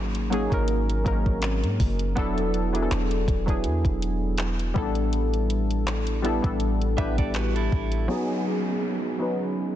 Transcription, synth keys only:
Already playing: F#3 A#3 C#4 D#4 G#4
0.30 F#3 A#3 C#4 D#4 G#4
0.50 F#3 A#3 C#4 D#4 A#4
1.04 F#3 A#3 C4 D#4 A#4
1.12 C#4
2.16 F#3 B3 D4 E4 A4
2.73 F#3 B3 D4 E4 G#4
2.82 A4
3.46 F#3 B3 D4 E4 G#4
4.74 G3 B3 C#4 E4 A4
4.82 D4
6.22 G3 B3 D4 E4 A4
6.42 G3 B3 D4 E4 A4
6.97 G3 B3 D4 E4 G4
8.08 F#3 B3 C#4 D#4 G#4
9.18 F#3 B3 C#4 D#4 B4

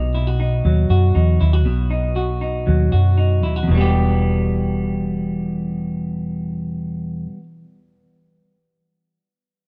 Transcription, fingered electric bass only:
Already playing: B1
0.65 D#2
0.90 F#2
1.16 E2
1.41 D#2
1.67 B1
2.68 D#2
2.93 F#2
3.44 D#2
3.69 E1

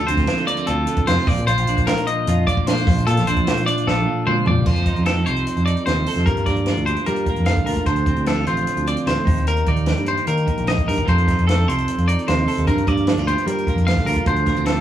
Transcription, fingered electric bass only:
0.09 D2
0.68 D2
1.07 F2
1.27 A#1
1.38 A#2
1.47 A#1
1.57 A#1
1.68 A#1
2.27 F2
2.87 A#1
3.07 A#2
3.18 A#1
3.28 A#1
3.87 A#1
4.26 A#2
4.46 F2
4.58 C2
4.66 F2
4.98 F2
5.28 C2
5.57 F2
5.87 D#2
6.16 F2
6.26 G2
6.47 G2
6.77 D2
7.08 G3
7.38 F2
7.68 D2
7.86 D2
8.17 D2
8.47 A1
8.77 D2
9.07 D2
9.27 D#2
9.67 D#2
9.98 G2
10.27 D#3
10.58 A#1
10.89 G2
11.08 F2
11.38 F2
11.68 C2
11.98 F2
12.28 D#2
12.57 D#2
12.67 G2
12.88 G2
13.17 D2
13.46 G3
13.75 F2
14.05 D2
14.26 D2
14.57 D2

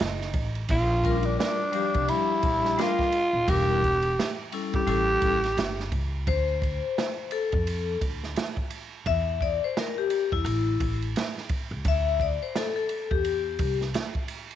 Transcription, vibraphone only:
1.03 G3 C#4 F4 A#4
1.11 D4
1.72 F3 G3 D4 G4
2.78 G3 D4 F4 A#4
3.47 G3 D4 E4 A#4
4.52 G3 C#4 E4 A4
4.87 G3 C#4 E4 A4
6.27 C5
7.32 A4
9.07 E5
9.42 D5
9.64 C5
9.78 A#4
9.98 G4
10.33 E4
11.88 E5
12.22 D5
12.43 C5
12.57 A4
12.76 A4
13.11 G4

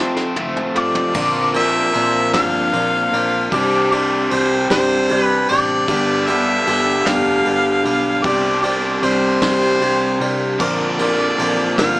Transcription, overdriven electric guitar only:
Already playing: F2 A3 C4
0.36 A3
0.75 F3
1.13 A#2 F3 A#3 D4 F4
3.51 C3 G3 C4 D4 G4
5.88 G2 D3 G3 B3 D4 G4
8.22 C3 G3 C4 D4 G4
10.58 A#2 D3 F3 A#3 D4 A#4

